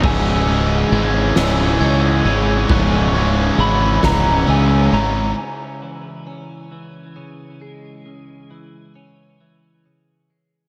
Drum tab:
RD |xxxxxx|xxxxxx|------|------|
SD |---o--|---o--|------|------|
BD |o-----|o--o--|------|------|